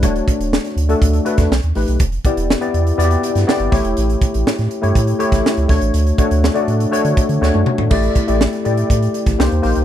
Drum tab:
CC |----------------|----------------|----------------|----------------|
HH |xxxx-xxxxxxx-xox|xxxx-xxxxxxx-xox|xxxx-xxxxxxx-xox|xxxx-xxxxxxx----|
SD |----oo-----oo-o-|----o------oo-o-|----oo-----oo-o-|----o-------o---|
T1 |----------------|----------------|----------------|-------------o--|
T2 |----------------|----------------|----------------|--------------o-|
FT |----------------|----------------|----------------|---------------o|
BD |o-o-----o--o----|o-o-----------o-|--o-----o--o--o-|--o-------o-----|

CC |x---------------|
HH |-xxx-xxxxxxx-xox|
SD |----oo-----oo-o-|
T1 |----------------|
T2 |----------------|
FT |----------------|
BD |o-o-----o--o----|